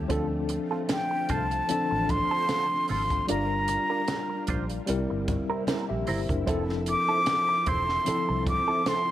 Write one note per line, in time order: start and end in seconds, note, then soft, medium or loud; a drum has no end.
0.00 0.11 G3 medium
0.00 3.25 A3 medium
0.00 0.12 C#4 medium
0.00 0.11 E4 medium
0.00 0.12 A4 medium
0.08 0.57 D2 loud
0.08 3.25 D3 medium
0.08 1.53 F3 medium
0.08 0.25 C4 medium
0.08 1.54 C4 medium
0.08 3.25 C4 medium
0.08 1.55 D4 medium
0.08 4.84 F4 medium
0.08 0.26 F4 medium
0.08 0.26 A4 medium
0.08 1.55 A4 medium
0.08 kick loud
0.08 closed hi-hat medium
0.49 muted clean electric guitar stroke soft
0.49 closed hi-hat medium
0.71 0.82 C4 soft
0.71 0.82 F4 medium
0.71 0.81 A4 medium
0.89 1.32 G5 medium
0.89 snare loud
0.89 closed hi-hat medium
0.89 high conga medium
1.11 muted clean electric guitar stroke soft
1.29 1.60 C2 medium
1.29 1.45 C4 medium
1.29 1.45 F4 medium
1.29 1.46 C5 medium
1.29 2.12 A5 medium
1.29 kick medium
1.29 closed hi-hat medium
1.29 low conga medium
1.51 muted clean electric guitar stroke soft
1.51 closed hi-hat soft
1.68 3.13 F3 medium
1.68 3.13 C4 medium
1.68 3.14 D4 medium
1.68 3.15 A4 medium
1.68 muted clean electric guitar stroke soft
1.68 muted fingered electric bass stroke soft
1.68 closed hi-hat medium
1.68 muted conga soft
1.91 2.22 A1 medium
1.91 muted clean electric guitar stroke soft
2.09 2.89 C6 loud
2.09 kick medium
2.09 closed hi-hat medium
2.09 muted conga medium
2.09 low conga medium
2.31 2.45 C4 medium
2.31 2.44 F4 medium
2.31 2.44 A4 medium
2.49 2.64 C4 medium
2.49 2.65 F4 medium
2.49 2.65 A4 medium
2.49 snare medium
2.49 closed hi-hat medium
2.49 high conga medium
2.88 3.20 G#1 medium
2.88 3.01 C4 medium
2.88 3.02 F4 medium
2.88 3.02 A4 medium
2.88 3.27 C6 medium
2.88 open hi-hat soft
2.88 high conga medium
3.10 muted clean electric guitar stroke soft
3.10 kick medium
3.10 closed hi-hat soft
3.27 3.76 G1 loud
3.27 4.72 G3 medium
3.27 6.44 G3 medium
3.27 4.72 D4 medium
3.27 4.86 D4 medium
3.27 3.44 D4 medium
3.27 4.73 F4 medium
3.27 3.45 F4 medium
3.27 4.86 A#4 medium
3.27 3.45 A#4 medium
3.27 4.74 A#4 medium
3.27 4.45 A#5 medium
3.27 closed hi-hat medium
3.68 muted clean electric guitar stroke soft
3.68 closed hi-hat medium
3.68 muted conga soft
3.90 4.01 D4 soft
3.90 4.01 F4 soft
3.90 4.00 A#4 medium
4.08 snare medium
4.08 closed hi-hat medium
4.08 high conga medium
4.30 muted clean electric guitar stroke soft
4.47 4.79 A#1 medium
4.47 4.64 D4 medium
4.47 4.64 F4 medium
4.47 4.65 C5 medium
4.47 kick medium
4.47 closed hi-hat medium
4.47 low conga medium
4.70 muted clean electric guitar stroke soft
4.70 closed hi-hat soft
4.87 5.05 C2 loud
4.87 6.46 C3 medium
4.87 6.31 G3 medium
4.87 6.46 A#3 medium
4.87 6.32 C4 medium
4.87 5.28 E4 medium
4.87 9.11 E4 medium
4.87 5.29 A#4 medium
4.87 muted clean electric guitar stroke soft
4.87 closed hi-hat medium
4.87 muted conga soft
5.10 5.41 G1 medium
5.10 muted clean electric guitar stroke soft
5.28 kick medium
5.28 closed hi-hat medium
5.28 muted conga medium
5.28 low conga medium
5.50 5.64 C4 soft
5.50 5.63 E4 medium
5.50 5.63 A#4 medium
5.67 5.83 C4 medium
5.67 5.84 E4 medium
5.67 5.84 A#4 medium
5.67 snare loud
5.67 closed hi-hat medium
5.67 high conga medium
5.89 6.04 A#1 medium
5.89 6.07 G4 medium
5.89 6.06 E5 medium
5.89 muted clean electric guitar stroke soft
6.07 6.25 G1 medium
6.07 6.20 C4 medium
6.07 6.20 E4 medium
6.07 6.28 E4 medium
6.07 6.20 A#4 medium
6.07 6.28 C5 medium
6.07 open hi-hat soft
6.07 high conga medium
6.29 6.43 F#1 medium
6.29 6.68 D4 soft
6.29 6.67 A#4 medium
6.29 muted clean electric guitar stroke soft
6.29 kick medium
6.29 closed hi-hat soft
6.29 high conga soft
6.46 6.94 F1 loud
6.46 7.91 F3 medium
6.46 9.11 F3 medium
6.46 6.63 C4 medium
6.46 7.92 C4 medium
6.46 9.11 C4 medium
6.46 6.63 E4 medium
6.46 7.92 E4 medium
6.46 9.11 A4 medium
6.46 6.63 A4 medium
6.46 7.93 A4 medium
6.46 kick loud
6.46 closed hi-hat medium
6.69 snare soft
6.86 7.70 D6 loud
6.86 muted clean electric guitar stroke soft
6.86 closed hi-hat medium
7.09 7.20 C4 soft
7.09 7.19 E4 medium
7.09 7.19 A4 medium
7.26 snare medium
7.26 closed hi-hat medium
7.26 high conga medium
7.49 muted clean electric guitar stroke soft
7.66 7.97 E1 medium
7.66 7.82 C4 medium
7.66 7.83 E4 medium
7.66 7.83 C5 medium
7.66 8.47 C6 loud
7.66 kick medium
7.66 closed hi-hat medium
7.66 low conga medium
7.89 muted clean electric guitar stroke soft
7.89 snare soft
8.05 9.11 F3 medium
8.05 9.11 C4 medium
8.05 9.11 E4 medium
8.05 9.11 A4 medium
8.05 muted clean electric guitar stroke soft
8.05 muted fingered electric bass stroke soft
8.05 closed hi-hat medium
8.05 muted conga soft
8.29 8.59 C2 medium
8.29 muted clean electric guitar stroke soft
8.47 8.90 D6 medium
8.47 kick medium
8.47 closed hi-hat medium
8.47 muted conga medium
8.47 low conga medium
8.68 8.82 C4 medium
8.68 8.82 E4 medium
8.68 8.81 A4 medium
8.86 9.02 C4 medium
8.86 9.02 E4 medium
8.86 9.02 A4 medium
8.86 9.11 C6 medium
8.86 snare loud
8.86 closed hi-hat medium
8.86 high conga medium